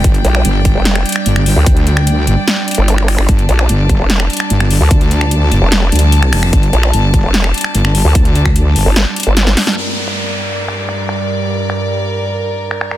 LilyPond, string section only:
\new Staff \with { instrumentName = "String section" } { \time 4/4 \key g \minor \tempo 4 = 148 << { g''1~ | g''1 | a''1~ | a''1~ |
a''1~ | a''1 | d''1~ | d''1 | } \\ { <g d' d''>1~ | <g d' d''>1~ | <g d' d''>1~ | <g d' d''>1~ |
<g d' d''>1~ | <g d' d''>1 | <g, g bes'>1~ | <g, g bes'>1 | } >> }